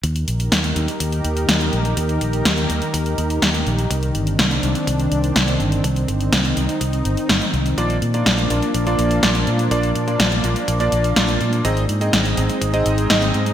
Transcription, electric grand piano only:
X:1
M:4/4
L:1/16
Q:1/4=124
K:Eb
V:1 name="Electric grand piano"
z16 | z16 | z16 | z16 |
[B,DFd] z2 [B,DFd]3 [B,DFd]3 [B,DFd]3 [B,DFd]4 | [B,DFd] z2 [B,DFd]3 [B,DFd]3 [B,DFd]3 [B,DFd]4 | [CEAe] z2 [CEAe]3 [CEAe]3 [CEAe]3 [CEAe]4 |]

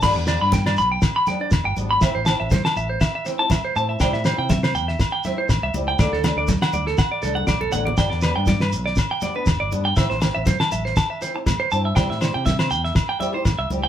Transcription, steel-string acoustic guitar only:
X:1
M:4/4
L:1/16
Q:"Swing 16ths" 1/4=121
K:G
V:1 name="Steel-string acoustic guitar"
[G,B,D] z [G,B,D] [B,D] z6 [G,B,D] D z2 [G,B,D] z | [E,CE] z [E,CE] C z6 [E,CE] [CE] z2 [E,CE] z | [G,CE] z [G,CE] [CE] z6 [CE] [CE] z2 [G,CE] z | [F,A,D] z [F,A,D] [A,D] z6 [F,A,D] [A,D] z2 [F,A,D] z |
[G,B,D] z [G,B,D] [B,D] z6 [G,B,D] [B,D] z2 [G,B,D] z | [E,CE] z [E,CE] C z6 [E,CE] [CE] z2 [E,CE] z | [G,CEG] z [G,CEG] [CEG] z6 [G,CEG] [EG] z2 [G,CEG] z |]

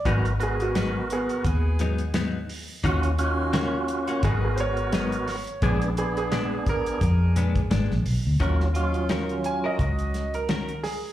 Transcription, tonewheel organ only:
X:1
M:4/4
L:1/8
Q:"Swing 16ths" 1/4=86
K:Ebm
V:1 name="Tonewheel organ"
[CGB] [CGB]3 z4 | [DFG] [DFG]3 [CGB]3 z | [C=DA] [CDA]3 z4 | [G,DF] [G,DF]3 z4 |]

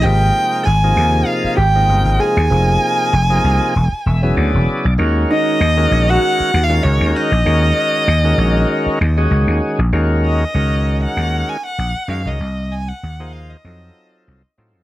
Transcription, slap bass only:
X:1
M:4/4
L:1/16
Q:"Swing 16ths" 1/4=97
K:Ebdor
V:1 name="Slap bass" clef=bass
A,,,2 z2 A,,,2 E,,2 z2 A,,,2 =G,,, A,,, z E,, | F,,,2 z2 F,,,2 C,, z =E,,, z E,,,2 =D,, E,,, z =B,,, | E,,2 z2 E,,2 B,,,2 z2 E,,2 D,, E,, z B,,, | E,,2 z2 E,,2 B,,,2 z2 E,,2 D,, E,, z B,,, |
E,,4 D,,4 E,,2 z2 B,,, z G,, D,, | C,,4 E,,4 F,,2 z2 C,, z =A,, F,, |]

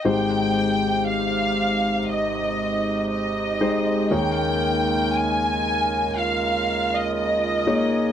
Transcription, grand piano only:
X:1
M:4/4
L:1/8
Q:1/4=59
K:Ab
V:1 name="Grand piano"
[A,EGc]4 z3 [A,EGc] | [B,EAd]4 z3 [B,EAd] |]
V:2 name="Grand piano" clef=bass
[A,,,A,,]8 | [E,,E,]8 |]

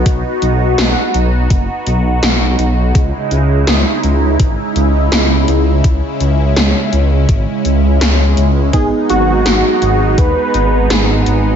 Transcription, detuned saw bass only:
X:1
M:4/4
L:1/8
Q:1/4=83
K:C#dor
V:1 name="Detuned saw bass" clef=bass
B,,, B,,, B,,, B,,, F,,, B,,, B,,, B,,, | C,, C,, C,, C,, G,,, C,, C,, C,, | C,, C,, C,, C,, G,,, C,, C,, C,, | G,,, G,,, G,,, G,,, D,, G,,, G,,, G,,, |]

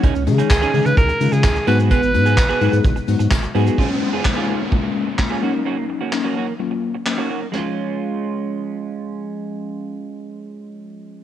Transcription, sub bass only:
X:1
M:4/4
L:1/16
Q:1/4=128
K:Dbmix
V:1 name="Sub bass" clef=bass
D,, D,, D,2 D,,2 D, D, D,,2 D, D, D,,2 A,,2- | A,, A,,, A,,2 A,,,2 A,, A,, A,,,2 A,, A,, A,,,2 A,,2 | z16 | z16 |
z16 | z16 |]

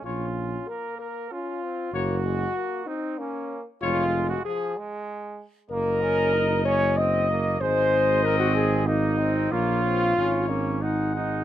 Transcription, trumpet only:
X:1
M:3/4
L:1/8
Q:1/4=95
K:Db
V:1 name="Trumpet"
d z4 z | d z4 z | d z4 z | e4 e2 |
e4 e2 | d2 d2 g2 |]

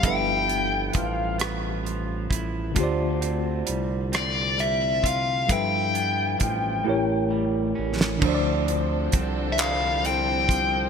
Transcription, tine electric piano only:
X:1
M:6/8
L:1/8
Q:3/8=44
K:Ddor
V:1 name="Tine electric piano"
[F,G,ABe]6 | [D,A,FGcd]6 | [F,G,ABe]3 [A,EG_B^c]3 | [K:Dm] [D,F,Dcd]6 |]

